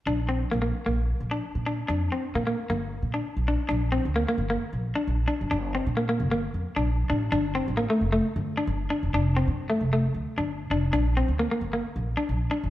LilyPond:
<<
  \new Staff \with { instrumentName = "Clean electric guitar" } { \time 4/4 \key bes \major \tempo 4 = 133 d'8 c'8 bes16 bes8 bes8 r8 d'8 r16 d'8 | d'8 c'8 bes16 bes8 bes8 r8 d'8 r16 d'8 | d'8 c'8 bes16 bes8 bes8 r8 d'8 r16 d'8 | d'8 c'8 bes16 bes8 bes8 r8 d'8 r16 d'8 |
d'8 c'8 bes16 a8 a8 r8 d'8 r16 d'8 | d'8 c'8 r16 a8 a8 r8 d'8 r16 d'8 | d'8 c'8 bes16 bes8 bes8 r8 d'8 r16 d'8 | }
  \new Staff \with { instrumentName = "Upright bass" } { \clef bass \time 4/4 \key bes \major bes,,4 bes,,8 r16 bes,,8. bes,,8 r16 bes,8. | f,8 r8 bes,8 r16 g,,8. bes,8 r16 bes,,8 r16 | bes,,8. d,8 r16 g,,8 r16 bes,,8 r16 bes,,8 r16 g,,16 | g,,8. bes,8. g,,8. f,16 r16 bes,,8. a,,8 |
g,,8. a,,8 r16 f,,8 r16 g,,8 r16 g,,8 r16 f,,16 | f,,8. g,8. f,,8. d,16 r16 g,,8. f,,8 | bes,,8. d,8 r16 g,,8 r16 bes,,8 r16 bes,,8 r16 g,,16 | }
>>